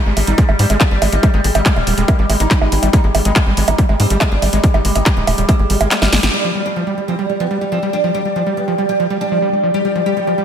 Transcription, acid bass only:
0.06 G#3
0.17 G#3
0.27 G3
0.38 G#3
0.49 G#3
0.59 G3
0.70 G#3
0.91 G3
1.02 G#3
1.12 G#3
1.23 G3
1.34 G#3
1.44 G#3
1.55 G3
1.66 G#3
1.76 G#3
1.87 G3
1.98 G#3
2.19 G3
2.30 G#3
2.40 G#3
2.51 G3
2.61 G#3
2.72 G#3
2.83 G3
2.93 G#3
3.04 G#3
3.15 G3
3.25 G#3
3.47 G3
3.57 G#3
3.68 G#3
3.78 G3
3.89 G#3
4.00 G#3
4.10 G3
4.21 G#3
4.32 G#3
4.42 G3
4.53 G#3
4.64 G#3
4.74 G3
4.85 G#3
4.95 G#3
5.06 G3
5.17 G#3
5.27 G#3
5.38 G3
5.49 G#3
5.59 G#3
5.70 G3
5.81 G#3
5.91 G#3
6.02 G3
6.12 G#3
6.23 G#3
6.34 G3
6.44 F3
6.55 G3
6.66 G3
6.76 F3
6.87 G3
6.98 G3
7.08 F3
7.19 G3
7.30 G3
7.40 F3
7.51 G3
7.61 G3
7.72 F3
7.83 G3
7.93 G3
8.04 F3
8.15 G3
8.25 G3
8.36 F3
8.47 G3
8.57 G3
8.68 F3
8.78 G3
8.89 G3
9.00 F3
9.10 G3
9.21 G3
9.32 F3
9.42 G3
9.53 G3
9.63 F3
9.74 G3
9.85 G3
9.95 F3
10.06 G3
10.17 G3
10.27 F3
10.38 G3

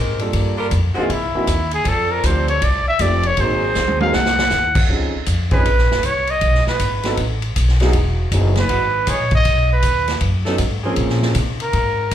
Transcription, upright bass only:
Already playing: G#2
0.34 G2
0.72 F2
0.96 muted upright bass stroke
1.09 C2
1.35 muted upright bass stroke
1.47 D#2
1.85 F2
2.24 D2
2.62 C2
2.87 muted upright bass stroke
2.99 F1
3.37 G#1
3.76 D#2
4.14 C2
4.51 D#2
4.89 C#2
5.14 muted upright bass stroke
5.27 F2
5.65 A#1
5.78 G#1
5.91 F1
6.03 C2
6.42 B1
6.67 muted upright bass stroke
6.80 G#1
7.18 A1
7.56 B1
7.94 E1
8.32 F#1
8.69 G#1
9.07 A#1
9.45 B1
9.83 D#2
10.21 F#2
10.59 G#2
10.97 A#2
11.35 C3
11.73 G#2

